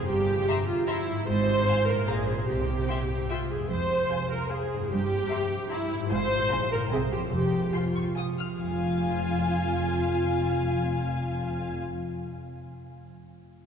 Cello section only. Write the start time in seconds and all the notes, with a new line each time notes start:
0.09 G2
1.28 G#2
2.08 A#2
2.49 C3
3.71 F2
4.92 G2
6.11 G#2
6.52 A#2
6.92 C3
7.33 F2
8.58 F2